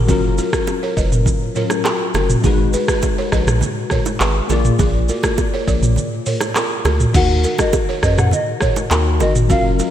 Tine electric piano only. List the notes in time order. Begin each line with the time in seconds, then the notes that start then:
Already playing: F#4 G#4
0.06 F#3 C#4 F4
0.11 A#4
1.54 F#3 C#4 F4 A#4
2.41 G#3 D#4 F#4
2.46 B4
4.47 A#3 F4 G#4
4.52 D5
7.12 D#3 D#4 F#4
7.17 A#4
8.90 D#3 D#4 F#4 A#4
9.47 F#3 C#4 F4
9.52 A#4